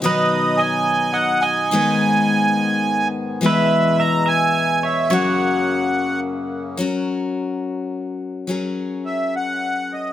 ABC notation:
X:1
M:3/4
L:1/8
Q:1/4=106
K:F#mix
V:1 name="Accordion"
d2 g2 f g- | g4- g z | e2 a g2 e | f4 z2 |
z6 | z2 e f2 d |]
V:2 name="Pedal steel guitar"
B2 d2 d d- | d4- d z | B2 e e2 c | c4 z2 |
z6 | z6 |]
V:3 name="Steel-string acoustic guitar"
[B,,D,F,B,DB]6 | [G,,D,G,B,DB]6 | [E,G,B,EB]6 | [F,CFA]6 |
[F,CFA]6 | [F,CGA]6 |]
V:4 name="Harmonium" clef=bass
[B,,F,D]6 | [G,,D,B,]6 | [E,,B,,G,]6 | [F,,C,A,]6 |
z6 | z6 |]